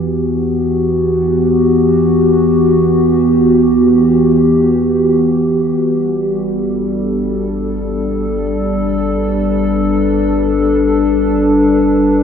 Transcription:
0.00 5.74 E2 medium
0.00 5.80 E3 medium
0.00 9.28 B3 medium
0.00 7.45 F#4 medium
0.00 9.27 G4 medium
5.78 12.23 G1 medium
5.78 12.23 G3 medium
6.24 12.23 A4 medium
6.63 12.23 D4 medium
8.87 12.23 B4 medium

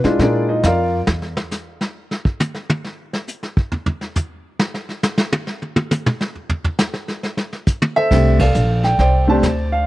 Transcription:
0.04 0.61 G#3 medium
0.04 0.21 D4 medium
0.04 0.61 E4 medium
0.04 0.61 F4 medium
0.04 muted upright bass stroke soft
0.04 snare soft
0.19 0.62 A#2 medium
0.19 0.49 D4 medium
0.19 0.49 G#4 medium
0.19 0.49 A#4 medium
0.19 0.49 D5 medium
0.19 brush sweep soft
0.19 kick soft
0.19 snare soft
0.49 0.64 D#4 medium
0.49 0.64 D#5 medium
0.63 1.06 F2 medium
0.63 0.99 F4 medium
0.63 0.99 A#4 medium
0.63 0.99 D5 medium
0.63 0.98 F5 medium
0.63 kick soft
0.63 snare medium
0.63 hi-hat pedal medium
1.07 1.35 E2 medium
1.07 snare medium
1.22 snare soft
1.37 snare medium
1.51 snare soft
1.51 hi-hat pedal medium
1.81 snare soft
2.11 snare soft
2.25 kick medium
2.40 hi-hat pedal medium
2.40 high tom loud
2.55 snare soft
2.70 high tom loud
2.84 snare soft
3.13 snare soft
3.28 hi-hat pedal medium
3.43 snare soft
3.57 kick medium
3.72 floor tom loud
3.86 floor tom medium
4.01 snare soft
4.16 floor tom medium
4.16 hi-hat pedal medium
4.59 snare loud
4.74 snare soft
4.89 snare soft
5.03 snare loud
5.03 hi-hat pedal medium
5.18 snare loud
5.32 high tom loud
5.47 snare soft
5.62 high tom soft
5.76 high tom loud
5.91 hi-hat pedal medium
5.91 high tom loud
6.06 mid tom loud
6.21 snare medium
6.35 floor tom soft
6.49 floor tom loud
6.64 floor tom medium
6.79 snare loud
6.79 hi-hat pedal medium
6.94 snare medium
7.08 snare soft
7.23 snare soft
7.37 snare medium
7.53 snare soft
7.67 kick medium
7.67 hi-hat pedal medium
7.82 high tom loud
7.96 8.40 A4 medium
7.96 8.80 C5 medium
7.96 8.37 E5 loud
7.96 high tom soft
8.11 8.54 C2 medium
8.11 8.37 A3 medium
8.11 8.37 C4 soft
8.11 8.37 D4 soft
8.11 8.38 G4 medium
8.11 brush sweep soft
8.11 kick medium
8.11 snare soft
8.11 crash medium
8.39 9.25 A4 medium
8.39 8.99 D5 medium
8.39 8.81 F5 medium
8.39 kick medium
8.39 ride medium
8.54 8.98 A#1 medium
8.54 hi-hat pedal medium
8.83 8.98 G5 medium
8.83 snare soft
8.99 9.42 C2 medium
8.99 9.29 C5 medium
8.99 9.29 D5 medium
8.99 9.29 G5 medium
8.99 brush sweep soft
8.99 kick soft
8.99 snare soft
9.27 9.41 A3 medium
9.27 9.42 C4 medium
9.27 9.42 D4 medium
9.27 9.42 G4 medium
9.27 9.85 C5 medium
9.27 9.85 D5 medium
9.27 9.74 A5 medium
9.43 9.86 D2 medium
9.43 kick soft
9.43 snare medium
9.43 hi-hat pedal soft
9.72 9.87 F5 medium

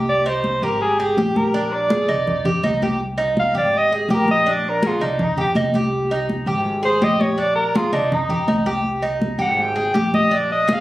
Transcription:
0.00 0.57 C2 medium
0.00 0.25 G4 medium
0.08 0.28 D5 loud
0.08 high conga soft
0.26 0.61 D#4 medium
0.26 0.65 C5 medium
0.26 high conga soft
0.44 high conga medium
0.62 1.13 G#1 medium
0.62 0.98 G4 medium
0.62 0.81 A#4 medium
0.81 1.01 G#4 medium
0.81 high conga soft
0.99 1.38 G4 medium
0.99 1.17 G#4 medium
0.99 high conga soft
1.17 2.03 A#1 medium
1.17 1.53 G4 medium
1.17 high conga medium
1.36 1.74 A#4 medium
1.36 high conga medium
1.54 1.89 D4 medium
1.54 high conga soft
1.73 2.45 D5 medium
1.73 high conga soft
1.90 2.08 G#4 medium
1.90 high conga loud
2.09 2.43 C2 medium
2.09 2.44 D#4 medium
2.09 high conga soft
2.27 high conga soft
2.27 low conga medium
2.45 2.62 A#1 medium
2.45 2.63 G4 medium
2.45 high conga soft
2.45 low conga medium
2.63 3.49 C2 medium
2.63 2.81 D#4 medium
2.63 high conga medium
2.82 3.00 G4 medium
2.82 high conga medium
3.00 high conga soft
3.18 3.53 D#4 medium
3.18 high conga soft
3.37 3.55 F5 medium
3.37 high conga medium
3.55 4.06 G#1 medium
3.55 3.90 G4 medium
3.55 3.79 D5 medium
3.73 3.93 D#5 loud
3.73 high conga soft
3.91 4.11 G4 soft
3.91 4.10 G#4 medium
3.91 high conga soft
4.08 4.94 A#1 medium
4.08 4.45 G4 medium
4.08 high conga medium
4.14 4.30 A#4 medium
4.28 4.53 D#5 loud
4.28 high conga medium
4.46 4.82 D4 medium
4.46 high conga soft
4.51 4.70 D5 medium
4.65 high conga soft
4.69 4.89 A#4 medium
4.83 5.00 G#4 medium
4.83 high conga medium
4.87 5.04 F4 medium
5.00 5.35 C2 medium
5.00 5.25 D4 medium
5.00 5.36 D#4 medium
5.00 high conga soft
5.19 high conga soft
5.19 low conga medium
5.23 5.40 D#4 medium
5.37 5.54 A#1 medium
5.37 5.55 G4 medium
5.37 high conga soft
5.37 low conga medium
5.41 5.51 G4 loud
5.55 6.41 C2 medium
5.55 5.74 D#4 medium
5.55 high conga medium
5.74 6.10 G4 medium
5.74 high conga medium
5.92 high conga soft
6.11 6.46 D#4 medium
6.11 high conga soft
6.29 high conga medium
6.46 6.98 G#1 medium
6.46 6.82 G4 medium
6.66 high conga soft
6.83 7.01 G#4 medium
6.83 7.05 C5 medium
6.83 high conga soft
7.01 7.87 A#1 medium
7.01 7.37 G4 medium
7.01 7.22 D#5 loud
7.01 high conga medium
7.21 7.41 C#5 medium
7.21 high conga medium
7.38 7.74 D4 medium
7.38 7.55 D5 medium
7.38 high conga soft
7.55 7.78 A#4 medium
7.55 high conga soft
7.75 7.93 F4 medium
7.75 7.93 G#4 medium
7.75 high conga medium
7.92 8.27 C2 medium
7.92 8.15 D4 medium
7.92 8.29 D#4 medium
7.92 high conga soft
8.12 8.67 D#4 medium
8.12 high conga soft
8.12 low conga medium
8.29 8.47 A#1 medium
8.29 8.48 G4 medium
8.29 high conga soft
8.29 low conga medium
8.47 9.34 C2 medium
8.47 8.66 D#4 medium
8.47 high conga medium
8.66 9.02 G4 medium
8.66 high conga medium
8.85 high conga soft
9.02 9.38 D#4 medium
9.02 high conga soft
9.22 high conga medium
9.38 9.90 G#1 medium
9.38 9.75 G4 medium
9.38 9.63 F#5 medium
9.59 10.14 G5 loud
9.59 high conga soft
9.76 9.94 G#4 medium
9.76 high conga soft
9.94 10.80 A#1 medium
9.94 10.30 G4 medium
9.94 high conga medium
10.14 10.37 D#5 medium
10.14 high conga medium
10.31 10.67 D4 medium
10.31 10.51 D5 medium
10.31 high conga soft
10.51 10.74 D#5 medium
10.51 high conga soft
10.68 10.80 G#4 medium
10.68 high conga medium
10.73 10.80 F5 medium

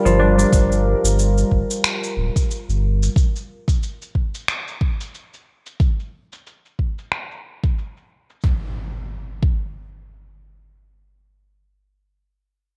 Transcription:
0.00 1.21 D3 medium
0.00 1.87 G3 medium
0.00 3.12 G3 medium
0.00 0.19 D4 medium
0.00 3.12 F4 medium
0.00 3.12 A#4 medium
0.05 0.45 G1 medium
0.05 2.39 F3 medium
0.05 shaker soft
0.19 0.38 D4 medium
0.38 2.06 D4 medium
0.38 shaker medium
0.53 0.95 G1 loud
0.53 kick loud
0.53 shaker medium
0.72 shaker soft
1.04 1.44 G1 medium
1.04 shaker medium
1.19 shaker medium
1.38 shaker soft
1.51 1.64 G1 medium
1.51 kick medium
1.71 shaker medium
1.84 finger snap medium
1.84 shaker medium
2.04 shaker soft
2.17 2.30 D1 loud
2.36 kick medium
2.36 shaker medium
2.51 shaker medium
2.69 3.09 G1 medium
2.69 shaker soft
3.03 shaker medium
3.16 kick loud
3.16 shaker medium
3.36 shaker soft
3.68 kick medium
3.68 shaker medium
3.83 shaker medium
4.02 shaker soft
4.15 kick medium
4.35 shaker medium
4.48 finger snap medium
4.48 shaker medium
4.68 shaker soft
4.81 kick medium
5.01 shaker medium
5.15 shaker medium
5.34 shaker soft
5.66 shaker medium
5.80 kick loud
5.80 shaker medium
6.00 shaker soft
6.33 shaker medium
6.47 shaker soft
6.65 shaker soft
6.79 kick medium
6.98 shaker medium
7.12 finger snap medium
7.12 shaker medium
7.31 shaker soft
7.64 kick medium
7.64 shaker medium
7.78 shaker medium
7.97 shaker soft
8.30 shaker medium
8.44 kick loud
8.44 impact medium
9.43 kick loud

